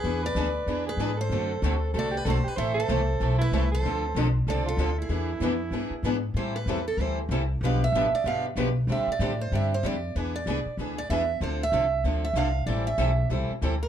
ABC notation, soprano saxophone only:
X:1
M:4/4
L:1/8
Q:"Swing" 1/4=190
K:Am
V:1 name="Soprano saxophone"
^G B4 G2 A- | A4 A G A G | c A4 E2 A- | A3 z A F2 E- |
E6- E z | z8 | z8 | z8 |
z8 | z8 | z8 |]